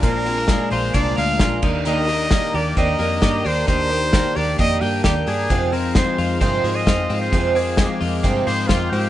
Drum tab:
CC |-------x|--------|--------|--------|
HH |xoxoxox-|xoxoxoxo|xoxoxoxo|xoxoxoxo|
SD |--o---o-|--o---o-|--o---o-|--o---o-|
BD |o-o-o-oo|--o-o-o-|o-o-o-o-|o-o-o-o-|

CC |--------|
HH |xoxoxoxo|
SD |--o---o-|
BD |o-o-o-o-|